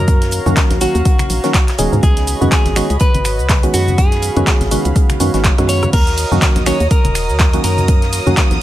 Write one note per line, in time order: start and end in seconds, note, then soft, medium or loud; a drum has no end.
0.00 0.40 F#2 medium
0.00 0.43 D#3 medium
0.00 0.43 F#3 medium
0.00 0.43 A#3 medium
0.00 0.43 C#4 medium
0.00 0.43 F#4 loud
0.00 8.62 F#4 medium
0.00 0.77 A#4 loud
0.00 1.99 C#5 medium
0.00 1.99 A#5 medium
0.08 2.01 F5 medium
0.08 kick loud
0.08 closed hi-hat medium
0.08 shaker soft
0.22 snare soft
0.22 closed hi-hat medium
0.22 shaker soft
0.31 closed hi-hat medium
0.31 open hi-hat loud
0.31 shaker medium
0.46 0.54 F#2 medium
0.46 0.79 D#3 loud
0.46 0.79 F#3 medium
0.46 0.79 A#3 medium
0.46 0.79 C#4 medium
0.46 0.79 F#4 loud
0.46 high conga medium
0.46 shaker soft
0.57 kick loud
0.57 snare loud
0.57 clap loud
0.57 closed hi-hat medium
0.57 shaker soft
0.70 0.87 A#1 loud
0.70 snare soft
0.70 closed hi-hat medium
0.70 low conga medium
0.70 shaker soft
0.81 1.40 D#3 medium
0.81 1.40 F#3 medium
0.81 1.40 A#3 medium
0.81 1.40 C#4 medium
0.81 1.40 F#4 medium
0.81 1.75 F#4 medium
0.81 closed hi-hat medium
0.81 open hi-hat loud
0.81 shaker medium
0.95 1.02 D#2 loud
0.95 closed hi-hat soft
0.95 shaker soft
1.05 kick loud
1.05 closed hi-hat medium
1.05 closed hi-hat loud
1.05 shaker soft
1.18 finger snap medium
1.18 closed hi-hat soft
1.18 closed hi-hat medium
1.18 high conga medium
1.18 shaker soft
1.30 1.40 A#1 medium
1.30 closed hi-hat medium
1.30 open hi-hat loud
1.30 shaker medium
1.43 1.53 D#3 loud
1.43 1.53 F#3 medium
1.43 1.53 A#3 medium
1.43 1.53 C#4 medium
1.43 1.53 F#4 loud
1.43 snare soft
1.43 closed hi-hat soft
1.43 shaker soft
1.54 kick loud
1.54 snare loud
1.54 clap loud
1.54 closed hi-hat medium
1.54 high conga medium
1.54 shaker soft
1.68 snare medium
1.68 clap soft
1.68 closed hi-hat medium
1.68 shaker soft
1.78 1.89 D#1 medium
1.78 2.38 D#3 loud
1.78 2.38 G#3 medium
1.78 2.38 B3 medium
1.78 2.38 C#4 medium
1.78 2.38 G#4 loud
1.78 closed hi-hat medium
1.78 open hi-hat loud
1.78 shaker medium
1.92 2.00 G#2 loud
1.92 high conga medium
1.92 shaker soft
2.03 2.35 C#2 loud
2.03 2.51 G#4 loud
2.03 8.62 C#5 medium
2.03 3.96 D#5 medium
2.03 5.89 B5 medium
2.03 kick loud
2.03 closed hi-hat medium
2.03 shaker soft
2.17 snare soft
2.17 closed hi-hat medium
2.17 shaker soft
2.27 closed hi-hat medium
2.27 open hi-hat loud
2.27 shaker medium
2.41 2.49 F#2 medium
2.41 2.74 D#3 loud
2.41 2.74 G#3 medium
2.41 2.74 B3 medium
2.41 2.74 C#4 medium
2.41 2.74 F#4 loud
2.41 high conga medium
2.41 shaker soft
2.52 3.00 G#4 loud
2.52 kick loud
2.52 snare loud
2.52 clap loud
2.52 closed hi-hat medium
2.52 shaker soft
2.65 2.82 G#1 loud
2.65 snare soft
2.65 closed hi-hat medium
2.65 low conga medium
2.65 shaker soft
2.76 2.88 D#3 loud
2.76 2.88 G#3 medium
2.76 2.88 B3 medium
2.76 2.88 C#4 medium
2.76 2.88 F#4 loud
2.76 finger snap medium
2.76 closed hi-hat medium
2.76 open hi-hat loud
2.76 shaker medium
2.90 2.98 C#2 loud
2.90 closed hi-hat soft
2.90 shaker soft
3.00 3.76 B4 loud
3.00 kick loud
3.00 closed hi-hat loud
3.00 closed hi-hat medium
3.00 shaker soft
3.14 3.40 G#1 medium
3.14 closed hi-hat medium
3.14 high conga medium
3.14 shaker soft
3.24 finger snap medium
3.24 closed hi-hat medium
3.24 open hi-hat loud
3.24 shaker medium
3.39 3.69 C#2 loud
3.39 shaker soft
3.49 kick loud
3.49 snare loud
3.49 clap loud
3.49 closed hi-hat medium
3.49 high conga medium
3.49 shaker soft
3.63 4.33 D#3 medium
3.63 4.33 G#3 medium
3.63 4.33 B3 medium
3.63 4.33 C#4 medium
3.63 4.33 F#4 medium
3.63 closed hi-hat medium
3.63 closed hi-hat soft
3.63 shaker soft
3.74 4.30 F#2 medium
3.74 3.99 F#4 medium
3.74 open hi-hat loud
3.74 shaker medium
3.88 high conga medium
3.88 shaker soft
3.98 5.40 G#4 medium
3.98 5.91 F5 medium
3.98 kick loud
3.98 closed hi-hat medium
3.98 shaker soft
4.11 snare soft
4.11 closed hi-hat medium
4.11 shaker soft
4.22 closed hi-hat medium
4.22 open hi-hat loud
4.22 shaker medium
4.36 4.44 F#2 medium
4.36 4.69 D#3 loud
4.36 4.69 G#3 medium
4.36 4.69 B3 medium
4.36 4.69 C#4 medium
4.36 4.69 F#4 loud
4.36 closed hi-hat soft
4.36 high conga medium
4.36 shaker soft
4.47 kick loud
4.47 snare loud
4.47 clap loud
4.47 closed hi-hat medium
4.47 shaker soft
4.61 4.77 G#1 medium
4.61 snare soft
4.61 closed hi-hat medium
4.61 low conga loud
4.61 shaker soft
4.71 5.18 D#3 medium
4.71 5.18 G#3 medium
4.71 5.18 B3 medium
4.71 5.18 C#4 medium
4.71 5.18 F#4 medium
4.71 closed hi-hat medium
4.71 open hi-hat loud
4.71 high conga medium
4.71 shaker medium
4.85 4.93 C#2 loud
4.85 closed hi-hat soft
4.85 shaker soft
4.96 kick loud
4.96 closed hi-hat medium
4.96 shaker soft
5.09 finger snap medium
5.09 closed hi-hat soft
5.09 closed hi-hat medium
5.09 high conga medium
5.09 shaker soft
5.20 5.30 F#2 medium
5.20 5.32 D#3 medium
5.20 5.32 G#3 medium
5.20 5.32 B3 medium
5.20 5.32 C#4 medium
5.20 5.32 F#4 loud
5.20 closed hi-hat medium
5.20 open hi-hat loud
5.20 shaker medium
5.34 5.50 G#1 medium
5.34 5.55 D#3 medium
5.34 5.55 G#3 medium
5.34 5.55 B3 medium
5.34 5.55 C#4 medium
5.34 5.55 F#4 medium
5.34 snare soft
5.34 closed hi-hat soft
5.34 shaker soft
5.44 kick loud
5.44 cross-stick medium
5.44 clap loud
5.44 closed hi-hat medium
5.44 high conga medium
5.44 shaker soft
5.58 5.88 F#2 medium
5.58 5.92 D#3 medium
5.58 5.92 G#3 medium
5.58 5.92 B3 medium
5.58 5.92 C#4 medium
5.58 5.92 F#4 loud
5.58 cross-stick medium
5.58 closed hi-hat medium
5.58 shaker soft
5.69 5.93 C#5 loud
5.69 open hi-hat loud
5.69 shaker medium
5.83 cross-stick medium
5.83 closed hi-hat soft
5.83 high conga medium
5.83 shaker soft
5.93 6.25 D#2 loud
5.93 6.66 A#4 loud
5.93 7.86 D#5 medium
5.93 8.62 A#5 medium
5.93 8.62 D#6 medium
5.93 kick loud
5.93 closed hi-hat medium
5.93 crash medium
5.93 shaker soft
6.07 snare soft
6.07 closed hi-hat medium
6.07 shaker soft
6.18 closed hi-hat medium
6.18 open hi-hat loud
6.18 ride medium
6.18 shaker medium
6.31 6.39 F#2 medium
6.31 6.64 D#3 loud
6.31 6.64 F#3 medium
6.31 6.64 A#3 medium
6.31 6.64 C#4 medium
6.31 6.64 F#4 loud
6.31 high conga medium
6.31 shaker soft
6.42 kick loud
6.42 snare loud
6.42 clap loud
6.42 closed hi-hat medium
6.42 shaker soft
6.56 6.72 A#1 loud
6.56 snare soft
6.56 closed hi-hat medium
6.56 low conga loud
6.56 shaker soft
6.66 6.78 D#3 loud
6.66 6.78 F#3 medium
6.66 6.78 A#3 medium
6.66 6.78 C#4 medium
6.66 6.78 F#4 loud
6.66 6.91 C#5 loud
6.66 finger snap medium
6.66 closed hi-hat medium
6.66 open hi-hat loud
6.66 ride medium
6.66 shaker medium
6.80 6.88 D#2 loud
6.80 closed hi-hat soft
6.80 shaker soft
6.91 7.63 A#4 loud
6.91 kick loud
6.91 closed hi-hat medium
6.91 shaker soft
7.05 7.31 D#1 medium
7.05 closed hi-hat medium
7.05 high conga loud
7.05 shaker soft
7.15 finger snap medium
7.15 closed hi-hat medium
7.15 open hi-hat loud
7.15 ride medium
7.15 shaker medium
7.29 7.59 D#2 loud
7.29 shaker soft
7.39 kick loud
7.39 snare loud
7.39 clap loud
7.39 closed hi-hat medium
7.39 high conga medium
7.39 shaker soft
7.53 8.23 D#3 medium
7.53 8.23 F#3 medium
7.53 8.23 A#3 medium
7.53 8.23 C#4 medium
7.53 8.23 F#4 medium
7.53 closed hi-hat medium
7.53 closed hi-hat soft
7.53 shaker soft
7.64 8.20 F#2 medium
7.64 8.58 A#4 medium
7.64 closed hi-hat medium
7.64 open hi-hat loud
7.64 ride medium
7.64 shaker medium
7.77 closed hi-hat soft
7.77 high conga medium
7.77 shaker soft
7.88 8.62 F5 medium
7.88 kick loud
7.88 closed hi-hat medium
7.88 shaker soft
8.02 snare soft
8.02 closed hi-hat medium
8.02 shaker soft
8.13 closed hi-hat medium
8.13 open hi-hat loud
8.13 ride medium
8.13 shaker medium
8.26 8.34 F#2 medium
8.26 8.59 D#3 loud
8.26 8.59 F#3 medium
8.26 8.59 A#3 medium
8.26 8.59 C#4 medium
8.26 8.59 F#4 loud
8.26 high conga loud
8.26 shaker soft
8.37 kick loud
8.37 snare loud
8.37 clap loud
8.37 closed hi-hat medium
8.37 shaker soft
8.51 8.62 A#1 loud
8.51 snare soft
8.51 closed hi-hat medium
8.51 low conga medium
8.51 shaker soft